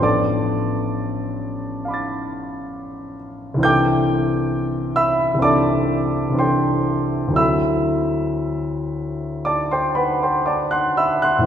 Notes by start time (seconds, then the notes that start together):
Already playing: A1 F3 B3
0.00 D4 A4 D5 A5 D6
1.85 F5 B5
1.90 D6 A6
3.54 C2 E3
3.59 C4 D4
3.63 A4 G5 D6 G6
4.96 E5 B5 E6
5.35 C2 E3
5.39 C4 D4 A4 D6
5.44 D5 A5
6.30 C2 E3
6.34 C4 D4
6.38 A4 C5 G5 C6
7.28 D2 F#3
7.32 C4 E4 E6
7.36 A4 E5 B5
9.45 D5 A5 D6
9.71 C5 G5 C6
9.95 B4 F#5 B5
10.23 C5 G5 C6
10.46 D5 A5 D6
10.71 F#5 C6 F#6
10.97 E5 B5 E6
11.22 F#5 C6 F#6
11.38 A2 E3